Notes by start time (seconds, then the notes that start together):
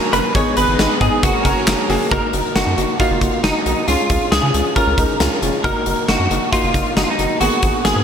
Already playing: F#3 C#4 G#4 A#4
0.13 F#1 A#3 F#4 A#4 B4, closed hi-hat
0.35 G#1 G#3 B3 D#4 G#4 C#5, kick, closed hi-hat
0.57 G#1 B3 D#4 G#4 B4, closed hi-hat
0.68 G#1
0.79 G#1 B3 D#4 G#4, snare, closed hi-hat
1.01 G#2 B3 D#4 G#4, kick, closed hi-hat
1.23 F#1 F#3 A#3 C#4 F#4 G#4 A#4, kick, closed hi-hat
1.45 F#1 A#3 F#4 A#4, kick, closed hi-hat
1.67 F#1 A#3 F#4 G#4, snare, clap, closed hi-hat
1.89 F#1 A#3 F#4 G#4, open hi-hat
2.11 F#1 A#3 D#4 F#4 A#4, kick, closed hi-hat
2.33 F#1 A#3 D#4 F#4, closed hi-hat
2.55 F#1 A#3 D#4 F#4, snare, closed hi-hat
2.67 F#2
2.77 F#1 A#3 D#4 F#4, closed hi-hat
3.00 A#3 D#4 F4 F#4, kick, closed hi-hat
3.11 F#1
3.21 F#1 A#3 D#4 F#4, kick, closed hi-hat
3.44 F#1 A#3 D#4 F#4, snare, closed hi-hat
3.66 B1 A#3 D#4 F#4, closed hi-hat
3.88 C#2 G#3 C#4 F4, closed hi-hat
4.10 C#2 G#3 C#4 F4, kick, closed hi-hat
4.32 C#2 G#3 C#4 F4 G#4, snare, closed hi-hat
4.43 C#3
4.54 C#2 G#3 C#4 F4, closed hi-hat
4.76 G#3 C#4 F4 A#4, kick, closed hi-hat
4.87 C#2
4.98 C#2 G#3 C#4 D#4, kick, closed hi-hat
5.20 C#2 G#3 C#4 F4, snare, closed hi-hat
5.42 F1 G#3 C#4 F4, closed hi-hat
5.64 F#1 A#3 D#4 F#4 A#4, kick, closed hi-hat
5.86 F#1 A#3 D#4 F#4, closed hi-hat
6.08 F#1 A#3 D#4 F#4, snare, closed hi-hat
6.19 F#2
6.30 F#1 A#3 D#4 F#4, closed hi-hat
6.52 A#3 D#4 F4 F#4, kick, closed hi-hat
6.63 F#1
6.74 F#1 A#3 D#4 F4, kick, closed hi-hat
6.97 F#1 A#3 D#4 F#4, snare, closed hi-hat
7.04 F4
7.10 D#4
7.19 F#1 A#3 D#4 F#4, closed hi-hat
7.41 G#1 A#3 B3 F#4 G#4, closed hi-hat
7.63 G#1 A#3 B3 G#4, kick, closed hi-hat
7.85 G#1 A#3 B3 F#4 G#4, snare, closed hi-hat
7.96 G#2